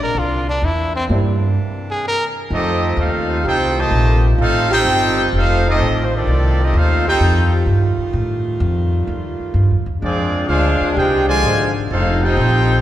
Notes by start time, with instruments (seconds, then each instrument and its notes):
Already playing: saxophone section C3 G#3 A#3 D4
0.03 trumpet A#4
0.15 upright bass C2
0.19 trumpet F4
0.49 trumpet D4
0.62 upright bass E2, saxophone section C3 E3 D4, trumpet E4
0.96 trumpet C4
1.09 upright bass G2, upright piano G3 A#3 C4 D4 E4
1.91 trumpet G#4
2.08 trumpet A#4
2.50 upright bass F2, saxophone section D#3 G3 A3 F4, trombone section A3 C4 D#4, trumpet section G4 A4 D#5
2.55 trumpet section C4
2.97 upright bass D#2, trombone section A3 C4 F4, trumpet section D#4 A4 C5 F5
3.44 upright bass C2, trombone section C4 D#4 G4, trumpet section D#4 A4 C5 G5
3.76 trombone section C3 D#3 A3, trumpet section G4 C5 D#5 A5
3.91 upright bass A#1
4.38 upright bass A1, trombone section A3 C4 F4, trumpet section D#4 A4 C5 F5
4.71 trombone section C4 D#4 G4, trumpet section D#4 A4 C5 G5
4.85 upright bass G1
5.33 upright bass F1, trombone section A3 C4 F4
5.37 trumpet section D#4 A4 C5 F5
5.66 trombone section A3 C4 D#4, trumpet section C4 G4 A4 D#5
5.79 upright bass A1
6.04 trumpet section C5
6.13 trombone section D#3 A3 D4, trumpet section C4 G4 A4 D5
6.27 upright bass C2
6.60 trombone section A3 C4 D#4, trumpet section C4 G4 A4 D#5
6.74 upright bass D#2, trombone section A3 C4 F4, trumpet section D#4 F5
6.78 trumpet section A4 C5
7.08 trombone section C4 D#4 G4, trumpet section D#4 A4 C5 G5
7.20 upright bass F2
7.66 upright bass G2
7.98 muted upright bass stroke
8.13 upright bass A2
8.60 upright bass F2
9.07 upright bass D#2
9.39 muted upright bass stroke
9.54 upright bass G2
9.71 upright bass F2
9.86 upright bass D#2
10.01 upright bass F2, saxophone section C3 G#3 A#3 D4, trombone section F3 G#3 D4, trumpet section C4 F4 G#4 D5
10.47 upright bass D2, trombone section G#3 D4 F4, trumpet section D4 G#4 C5 F5
10.81 muted upright bass stroke
10.95 upright bass C2, trumpet section D#4 G#4 C5 G5, trombone section G4
11.27 trombone section D3 F3 G#3, trumpet section F4 C5 D5 G#5
11.43 upright bass G#1
11.90 upright bass F1, saxophone section G3 A3 D#4 F4, trombone section A3 C4 F4, trumpet section D#4 A4 C5 F5
12.22 trombone section C4 D#4 G4, trumpet section D#4 A4 C5 G5
12.37 upright bass A#1